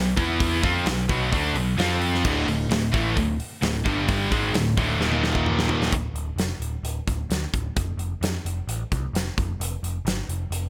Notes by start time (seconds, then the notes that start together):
Already playing: B1 B2 F#3
0.17 E2 E3 B3 E4, kick, open hi-hat
0.40 kick, open hi-hat
0.62 F2 F3 C4 F4, kick, open hi-hat
0.85 B1 B2 F#3, snare, open hi-hat
1.09 B1 B2 F#3 B3, kick, open hi-hat
1.32 D2 D3 A3 D4, kick, open hi-hat
1.53 B1 B2 F#3, open hi-hat
1.77 F2 F3 C4 F4, snare, open hi-hat
2.01 open hi-hat
2.14 snare
2.23 D1 D2 A2 D3, kick, crash
2.47 D1 D2 A2, open hi-hat
2.69 D1 D2 A2, snare, open hi-hat
2.92 A1 A2 E3 A3, kick, open hi-hat
3.16 D1 D2 A2, kick, open hi-hat
3.40 open hi-hat
3.62 D1 D2 A2, snare, open hi-hat
3.85 G1 G2 D3 G3, kick, open hi-hat
4.08 kick, open hi-hat
4.31 G#1 G#2 D#3 G#3, kick, open hi-hat
4.53 D1 D2 A2, snare, open hi-hat
4.77 D1 D2 A2 D3, kick, open hi-hat
4.99 D#1 D#2 A#2, snare
5.03 D#3
5.12 high tom
5.24 snare
5.35 kick
5.46 mid tom
5.59 snare
5.69 floor tom
5.82 snare
5.92 D1, kick, closed hi-hat
6.14 D1, closed hi-hat
6.36 F1, snare, closed hi-hat
6.60 D1, closed hi-hat
6.83 D1, closed hi-hat
7.07 D1, kick, closed hi-hat
7.30 D2, snare, closed hi-hat
7.53 D1, kick, closed hi-hat
7.76 F1, kick, closed hi-hat
7.97 F1, closed hi-hat
8.21 F2, snare, closed hi-hat
8.45 F1, closed hi-hat
8.67 A1, closed hi-hat
8.92 C2, kick, closed hi-hat
9.13 F1, snare, closed hi-hat
9.37 F1, kick, closed hi-hat
9.60 F1, closed hi-hat
9.83 F1, closed hi-hat
10.05 G1, snare, closed hi-hat
10.29 F1, closed hi-hat
10.51 F1, closed hi-hat